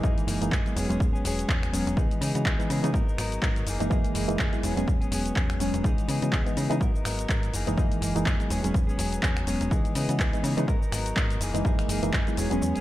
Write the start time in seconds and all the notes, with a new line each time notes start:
0.03 F#2 E3 G#3 A#3 D#4 G#4, kick, cabasa
0.17 F#1, closed hi-hat, cabasa
0.27 F#1 E3 A#3 D#4 G#4, open hi-hat, cabasa
0.41 F#1 E3 G#3 A#3 D#4, closed hi-hat, cabasa
0.51 F#2 E3 A#3 D#4 G#4, kick, clap, cabasa
0.65 F#3 G#3 B3 E4, closed hi-hat, cabasa
0.75 E1 F#3 B3 C#4 G#4, open hi-hat, cabasa
0.89 E1 F#3 G#3 B3 C#4 G#4, closed hi-hat, cabasa
1.00 E2, kick, cabasa
1.13 E1 B3 C#4 G#4, cabasa
1.24 E1 F#3 B3 C#4 G#4, open hi-hat, cabasa
1.39 closed hi-hat, cabasa
1.48 E2 F#3 B3 C#4 G#4, kick, clap, cabasa
1.63 finger snap, closed hi-hat, cabasa
1.72 E1 F#3 G#3 B3 C#4 G#4, open hi-hat, cabasa
1.87 E1, closed hi-hat, cabasa
1.97 C#2 E3 G#3 B3 D#4 G#4, kick, cabasa
2.11 closed hi-hat, cabasa
2.20 C#3 E3 B3 D#4 G#4, open hi-hat, cabasa
2.34 C#3 E3 G#3 B3 F#4, closed hi-hat, cabasa
2.45 C#2 E3 B3 D#4 G#4, kick, clap, cabasa
2.59 E3 G#3 B3 D#4, closed hi-hat, cabasa
2.69 C#3 E3 B3 D#4 G#4, open hi-hat, cabasa
2.83 C#3 E3 G#3 B3 D#4 G#4, closed hi-hat, cabasa
2.93 G#2 F#3 B3 D#4 F#4 A#4, kick, cabasa
3.07 G#1 B3 D#4 A#4, cabasa
3.17 G#1 F#3 B3 D#4 A#4, finger snap, open hi-hat, cabasa
3.32 closed hi-hat, cabasa
3.42 G#2 F#3 B3 D#4 A#4, kick, clap, cabasa
3.56 closed hi-hat, cabasa
3.66 F#1 E3 A#3 D#4 G#4, open hi-hat, cabasa
3.80 F#1 E3 G#3 A#3 D#4, closed hi-hat, cabasa
3.90 F#2 E3 G#3 A#3 D#4 G#4, kick, cabasa
4.04 F#1, closed hi-hat, cabasa
4.14 F#1 E3 A#3 D#4 G#4, open hi-hat, cabasa
4.28 F#1 E3 G#3 A#3 D#4, closed hi-hat, cabasa
4.39 F#2 E3 A#3 D#4 G#4, kick, clap, cabasa
4.52 F#3 G#3 B3 E4, closed hi-hat, cabasa
4.63 E1 F#3 B3 C#4 G#4, open hi-hat, cabasa
4.76 E1 F#3 G#3 B3 C#4 G#4, closed hi-hat, cabasa
4.88 E2, kick, cabasa
5.01 E1 B3 C#4 G#4, closed hi-hat, cabasa
5.11 E1 F#3 B3 C#4 G#4, open hi-hat, cabasa
5.26 closed hi-hat, cabasa
5.36 E2 F#3 B3 C#4 G#4, kick, clap, cabasa
5.50 finger snap, closed hi-hat, cabasa
5.59 E1 F#3 G#3 B3 C#4 G#4, open hi-hat, cabasa
5.74 E1, closed hi-hat, cabasa
5.84 C#2 E3 G#3 B3 D#4 G#4, kick, cabasa
5.98 closed hi-hat, cabasa
6.07 C#3 E3 B3 D#4 G#4, open hi-hat, cabasa
6.22 C#3 E3 G#3 B3 F#4, closed hi-hat, cabasa
6.32 C#2 E3 B3 D#4 G#4, kick, clap, cabasa
6.46 E3 G#3 B3 D#4, closed hi-hat, cabasa
6.56 C#3 E3 B3 D#4 G#4, open hi-hat, cabasa
6.69 C#3 E3 G#3 B3 D#4 G#4, closed hi-hat, cabasa
6.80 G#2 F#3 A#3 B3 D#4 F#4 A#4, kick, cabasa
6.94 G#1 B3 D#4 A#4, cabasa
7.04 G#1 F#3 B3 D#4 A#4, finger snap, open hi-hat, cabasa
7.19 closed hi-hat, cabasa
7.29 G#2 F#3 B3 D#4 A#4, kick, clap, cabasa
7.43 closed hi-hat, cabasa
7.53 F#1 E3 A#3 D#4 G#4, open hi-hat, cabasa
7.67 F#1 E3 G#3 A#3 D#4, closed hi-hat, cabasa
7.77 F#2 E3 G#3 A#3 D#4 G#4, kick, cabasa
7.91 F#1, closed hi-hat, cabasa
8.01 F#1 E3 A#3 D#4 G#4, open hi-hat, cabasa
8.15 F#1 E3 G#3 A#3 D#4, closed hi-hat, cabasa
8.25 F#2 E3 A#3 D#4 G#4, kick, clap, cabasa
8.39 F#3 G#3 B3 E4, closed hi-hat, cabasa
8.49 E1 F#3 B3 C#4 G#4, open hi-hat, cabasa
8.63 E1 F#3 G#3 B3 C#4 G#4, closed hi-hat, cabasa
8.74 E2, kick, cabasa
8.87 E1 B3 C#4 G#4, cabasa
8.97 E1 F#3 B3 C#4 G#4, open hi-hat, cabasa
9.12 closed hi-hat, cabasa
9.22 E2 F#3 B3 C#4 G#4, kick, clap, cabasa
9.37 finger snap, closed hi-hat, cabasa
9.46 E1 F#3 G#3 B3 C#4 G#4, open hi-hat, cabasa
9.61 E1, closed hi-hat, cabasa
9.70 C#2 E3 G#3 B3 D#4 G#4, kick, cabasa
9.85 closed hi-hat, cabasa
9.94 C#3 E3 B3 D#4 G#4, open hi-hat, cabasa
10.09 C#3 E3 G#3 B3 F#4, closed hi-hat, cabasa
10.19 C#2 E3 B3 D#4 G#4, kick, clap, cabasa
10.33 E3 G#3 B3 D#4, closed hi-hat, cabasa
10.43 C#3 E3 B3 D#4 G#4, open hi-hat, cabasa
10.57 C#3 E3 G#3 B3 D#4 G#4, closed hi-hat, cabasa
10.67 G#2 F#3 B3 D#4 A#4, kick, cabasa
10.81 G#1 B3 D#4 A#4, cabasa
10.91 G#1 F#3 B3 D#4 A#4, finger snap, open hi-hat, cabasa
11.06 closed hi-hat, cabasa
11.16 G#2 F#3 B3 D#4 A#4, kick, clap, cabasa
11.30 closed hi-hat, cabasa
11.40 F#1 E3 A#3 D#4 G#4, open hi-hat, cabasa
11.54 F#1 E3 G#3 A#3 D#4, closed hi-hat, cabasa
11.65 F#2 E3 G#3 A#3 D#4 G#4, kick, cabasa
11.78 F#1, finger snap, closed hi-hat, cabasa
11.88 F#1 E3 A#3 D#4 G#4, open hi-hat, cabasa
12.02 F#1 E3 G#3 A#3 D#4, closed hi-hat, cabasa
12.13 F#2 E3 A#3 D#4 G#4, kick, clap, cabasa
12.27 F#3 G#3 B3 E4, closed hi-hat, cabasa
12.37 E1 F#3 B3 C#4 G#4, open hi-hat, cabasa
12.51 E1 F#3 G#3 B3 C#4 G#4, closed hi-hat, cabasa
12.62 E2, cabasa
12.75 E1 C#4 G#4, closed hi-hat, cabasa